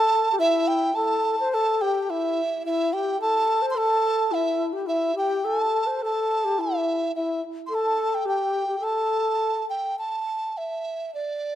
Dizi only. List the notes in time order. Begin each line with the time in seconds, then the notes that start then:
Already playing: A5
0.40 E5
0.68 G5
0.95 A5
1.52 A5
1.81 G5
2.03 G5
2.10 E5
2.66 E5
2.93 G5
3.21 A5
3.71 C6
3.78 A5
4.34 E5
4.88 E5
5.18 G5
5.46 A5
6.05 A5
6.61 E5
7.16 E5
7.67 C6
7.75 A5
8.14 G5
8.29 G5
8.84 A5
9.70 G5
9.99 A5
10.57 E5
11.14 D5